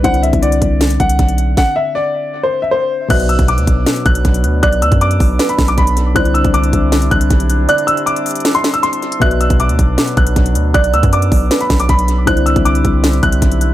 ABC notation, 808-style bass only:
X:1
M:4/4
L:1/16
Q:1/4=157
K:Bphr
V:1 name="808-style bass" clef=bass
C,,3 C,,3 C,,4 C,,2 B,,,4 | z16 | B,,,3 B,,,2 D,, B,,,2 z2 B,,,2 B,,,2 D,,2 | B,,,2 D,, F,,3 B,,,2 z2 B,,,2 B,,,4 |
C,,3 C,,3 C,,4 C,,2 B,,,4 | z16 | B,,,3 B,,,2 D,, B,,,2 z2 B,,,2 B,,,2 D,,2 | B,,,2 D,, F,,3 B,,,2 z2 B,,,2 B,,,4 |
C,,3 C,,3 C,,4 C,,2 B,,,4 |]